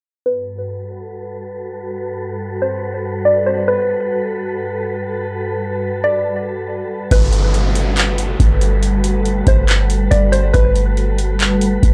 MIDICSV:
0, 0, Header, 1, 7, 480
1, 0, Start_track
1, 0, Key_signature, 1, "major"
1, 0, Tempo, 428571
1, 288, Time_signature, 4, 2, 24, 8
1, 13371, End_track
2, 0, Start_track
2, 0, Title_t, "Synth pluck"
2, 0, Program_c, 0, 84
2, 290, Note_on_c, 0, 71, 98
2, 1684, Note_off_c, 0, 71, 0
2, 2933, Note_on_c, 0, 72, 77
2, 3158, Note_off_c, 0, 72, 0
2, 3642, Note_on_c, 0, 74, 68
2, 3873, Note_off_c, 0, 74, 0
2, 3880, Note_on_c, 0, 72, 85
2, 4112, Note_off_c, 0, 72, 0
2, 4121, Note_on_c, 0, 71, 103
2, 5520, Note_off_c, 0, 71, 0
2, 6763, Note_on_c, 0, 74, 78
2, 6993, Note_off_c, 0, 74, 0
2, 7971, Note_on_c, 0, 71, 103
2, 9365, Note_off_c, 0, 71, 0
2, 10615, Note_on_c, 0, 72, 78
2, 10839, Note_off_c, 0, 72, 0
2, 11323, Note_on_c, 0, 74, 70
2, 11553, Note_off_c, 0, 74, 0
2, 11561, Note_on_c, 0, 72, 94
2, 11792, Note_off_c, 0, 72, 0
2, 11800, Note_on_c, 0, 71, 107
2, 13199, Note_off_c, 0, 71, 0
2, 13371, End_track
3, 0, Start_track
3, 0, Title_t, "Ambient pad"
3, 0, Program_c, 1, 92
3, 288, Note_on_c, 1, 66, 67
3, 288, Note_on_c, 1, 69, 68
3, 288, Note_on_c, 1, 71, 79
3, 290, Note_on_c, 1, 43, 74
3, 7923, Note_off_c, 1, 66, 0
3, 7923, Note_off_c, 1, 69, 0
3, 7923, Note_off_c, 1, 71, 0
3, 7924, Note_off_c, 1, 43, 0
3, 7963, Note_on_c, 1, 66, 74
3, 7963, Note_on_c, 1, 69, 70
3, 7963, Note_on_c, 1, 71, 86
3, 7964, Note_on_c, 1, 55, 77
3, 13371, Note_off_c, 1, 55, 0
3, 13371, Note_off_c, 1, 66, 0
3, 13371, Note_off_c, 1, 69, 0
3, 13371, Note_off_c, 1, 71, 0
3, 13371, End_track
4, 0, Start_track
4, 0, Title_t, "Synth texture"
4, 0, Program_c, 2, 99
4, 284, Note_on_c, 2, 66, 74
4, 285, Note_on_c, 2, 55, 74
4, 285, Note_on_c, 2, 69, 72
4, 285, Note_on_c, 2, 71, 86
4, 7921, Note_off_c, 2, 55, 0
4, 7921, Note_off_c, 2, 66, 0
4, 7921, Note_off_c, 2, 71, 0
4, 7922, Note_off_c, 2, 69, 0
4, 7966, Note_on_c, 2, 66, 73
4, 7966, Note_on_c, 2, 71, 89
4, 7967, Note_on_c, 2, 57, 80
4, 13371, Note_off_c, 2, 57, 0
4, 13371, Note_off_c, 2, 66, 0
4, 13371, Note_off_c, 2, 71, 0
4, 13371, End_track
5, 0, Start_track
5, 0, Title_t, "808-style bass"
5, 0, Program_c, 3, 38
5, 7966, Note_on_c, 3, 31, 107
5, 9362, Note_off_c, 3, 31, 0
5, 9406, Note_on_c, 3, 31, 97
5, 10562, Note_off_c, 3, 31, 0
5, 10605, Note_on_c, 3, 31, 107
5, 11297, Note_off_c, 3, 31, 0
5, 11327, Note_on_c, 3, 31, 107
5, 11788, Note_off_c, 3, 31, 0
5, 11807, Note_on_c, 3, 31, 111
5, 13202, Note_off_c, 3, 31, 0
5, 13248, Note_on_c, 3, 31, 102
5, 13371, Note_off_c, 3, 31, 0
5, 13371, End_track
6, 0, Start_track
6, 0, Title_t, "Downlifter"
6, 0, Program_c, 4, 103
6, 7968, Note_on_c, 4, 60, 80
6, 11808, Note_off_c, 4, 60, 0
6, 13371, End_track
7, 0, Start_track
7, 0, Title_t, "Drums"
7, 7967, Note_on_c, 9, 36, 117
7, 7967, Note_on_c, 9, 42, 79
7, 8079, Note_off_c, 9, 36, 0
7, 8079, Note_off_c, 9, 42, 0
7, 8205, Note_on_c, 9, 42, 74
7, 8317, Note_off_c, 9, 42, 0
7, 8447, Note_on_c, 9, 42, 61
7, 8559, Note_off_c, 9, 42, 0
7, 8684, Note_on_c, 9, 42, 73
7, 8796, Note_off_c, 9, 42, 0
7, 8924, Note_on_c, 9, 42, 78
7, 8934, Note_on_c, 9, 39, 113
7, 9036, Note_off_c, 9, 42, 0
7, 9046, Note_off_c, 9, 39, 0
7, 9164, Note_on_c, 9, 42, 70
7, 9276, Note_off_c, 9, 42, 0
7, 9406, Note_on_c, 9, 36, 97
7, 9408, Note_on_c, 9, 42, 76
7, 9518, Note_off_c, 9, 36, 0
7, 9520, Note_off_c, 9, 42, 0
7, 9647, Note_on_c, 9, 42, 72
7, 9759, Note_off_c, 9, 42, 0
7, 9885, Note_on_c, 9, 42, 78
7, 9997, Note_off_c, 9, 42, 0
7, 10124, Note_on_c, 9, 42, 76
7, 10236, Note_off_c, 9, 42, 0
7, 10365, Note_on_c, 9, 42, 62
7, 10477, Note_off_c, 9, 42, 0
7, 10603, Note_on_c, 9, 42, 69
7, 10605, Note_on_c, 9, 36, 100
7, 10715, Note_off_c, 9, 42, 0
7, 10717, Note_off_c, 9, 36, 0
7, 10844, Note_on_c, 9, 42, 80
7, 10854, Note_on_c, 9, 39, 112
7, 10956, Note_off_c, 9, 42, 0
7, 10966, Note_off_c, 9, 39, 0
7, 11086, Note_on_c, 9, 42, 72
7, 11198, Note_off_c, 9, 42, 0
7, 11329, Note_on_c, 9, 42, 76
7, 11441, Note_off_c, 9, 42, 0
7, 11568, Note_on_c, 9, 42, 74
7, 11680, Note_off_c, 9, 42, 0
7, 11807, Note_on_c, 9, 36, 118
7, 11807, Note_on_c, 9, 42, 79
7, 11919, Note_off_c, 9, 36, 0
7, 11919, Note_off_c, 9, 42, 0
7, 12046, Note_on_c, 9, 42, 71
7, 12158, Note_off_c, 9, 42, 0
7, 12288, Note_on_c, 9, 42, 62
7, 12400, Note_off_c, 9, 42, 0
7, 12527, Note_on_c, 9, 42, 74
7, 12639, Note_off_c, 9, 42, 0
7, 12767, Note_on_c, 9, 42, 79
7, 12777, Note_on_c, 9, 39, 115
7, 12879, Note_off_c, 9, 42, 0
7, 12889, Note_off_c, 9, 39, 0
7, 13007, Note_on_c, 9, 42, 70
7, 13119, Note_off_c, 9, 42, 0
7, 13248, Note_on_c, 9, 36, 98
7, 13251, Note_on_c, 9, 42, 78
7, 13360, Note_off_c, 9, 36, 0
7, 13363, Note_off_c, 9, 42, 0
7, 13371, End_track
0, 0, End_of_file